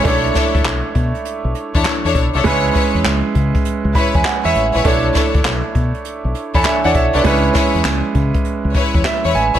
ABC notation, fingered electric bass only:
X:1
M:4/4
L:1/16
Q:"Swing 16ths" 1/4=100
K:Bdor
V:1 name="Fingered electric bass" clef=bass
B,,,2 z D,, B,,, z B,, z2 B,,, z E,, z E,, B,,, =C,, | C,,2 z E,, C,, z C, z2 C,, z E,, z E,, A,,, ^A,,, | B,,,2 z D,, B,,, z B,, z2 B,,, z E,, z E,, B,,, =C,, | C,,2 z E,, C,, z C, z2 C,, z E,, z E,, A,,, ^A,,, |]